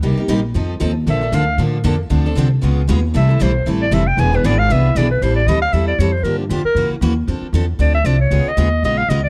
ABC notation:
X:1
M:4/4
L:1/8
Q:"Swing" 1/4=232
K:Am
V:1 name="Clarinet"
z8 | e2 f2 z4 | z8 | e2 c2 z d e g |
^g B d f e2 d B | c d ^d f e =d ^c =c | _B D F B2 z3 | z4 d e d ^c- |
^c ^d3 d ^e d =d |]
V:2 name="Steel-string acoustic guitar"
[C,G,_B,_EG] [B,EG] [C,G,B,EG] z [F,CEA] z [F,CEA] z | [D,F,_B,DA] [B,DA] [D,F,B,DA] z [D,F,B,DA] z [D,F,B,DA] z | [D,F,CDA] [CDA] [D,F,CDA] z [^C,^G,B,^E^G] z [C,G,B,EG] z | [C,E,A,EA] [A,EA] [C,E,A,EA] z [C,E,A,EA] z [C,E,A,EA] z |
[E,B,D^G] [B,DG] [E,B,DG] z [E,B,DG] z [E,B,DG] z | [E,G,CEA] z [E,G,CEA] z [E,G,CEA] z [E,G,CEA] z | [D,F,_B,DG] z [D,F,B,DG] z [^C,E,^A,^C^F] z [C,E,A,CF] z | [F,CDA] z [F,CDA] z [F,CDA] z [F,CDA] z |
[^C,^G,B,^E^G] z [C,G,B,EG] z [C,G,B,EG] z [C,G,B,EG] z |]
V:3 name="Steel-string acoustic guitar"
[C,G,_B,_EG] z [C,G,B,EG] z [F,CEA] z [F,CEA] z | [D,F,_B,DA] z [D,F,B,DA] z [D,F,B,DA] z [D,F,B,DA] z | [D,F,CDA] z [D,F,CDA] z [^C,^G,B,^E^G] z [C,G,B,EG] z | [C,E,G,CEA] z [C,E,G,CEA] z [C,E,G,CEA] z [C,E,G,CEA] z |
[E,B,D^GB] z [E,B,DGB] z [E,B,DGB] z [E,B,DGB] z | z8 | z8 | z8 |
z8 |]
V:4 name="Upright bass" clef=bass
C,, z _B,,,2 F,,2 _E,,2 | _B,,,2 D,,2 A,,2 F,,2 | D,,2 C,,2 ^C,,2 ^D,,2 | C,,2 B,,,2 A,,,2 F,,,2 |
E,,,2 ^G,,,2 C,,2 B,,,2 | A,,,2 D,,2 E,,2 F,,2 | G,,2 F,, z ^F,, z ^D,,2 | F,, z E,,2 D,,2 C,,2 |
^C,, z ^D,,2 ^A,,,2 C,,2 |]